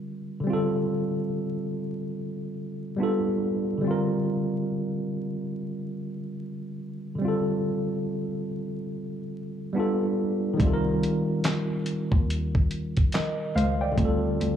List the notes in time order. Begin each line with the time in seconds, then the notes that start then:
Already playing: D3 G3 C4 F4 A#4
0.40 D3 G3
0.47 C4 F4
0.53 A4
2.96 G3 B3 D4
3.01 F4 A4
3.78 D3 G3
3.84 C4 F4
3.91 A#4
7.15 D3 G3
7.22 C4 F4
7.28 A4
9.73 G3 B3 D4
9.78 F4 A4
10.54 D#3 G3
10.60 C2 C4 F4, kick, closed hi-hat
10.67 A4
10.73 A#4
11.03 closed hi-hat
11.44 snare, clap, closed hi-hat
11.86 closed hi-hat
12.12 D#2, kick
12.30 closed hi-hat
12.55 kick
12.71 closed hi-hat
12.97 kick, closed hi-hat
13.12 A#4 D#5, snare, clap, closed hi-hat
13.56 C#2 C5 F5, closed hi-hat
13.81 D5 G5
13.92 D3 G3
13.98 D2 C4 F4, kick, closed hi-hat
14.05 A4
14.40 D2, closed hi-hat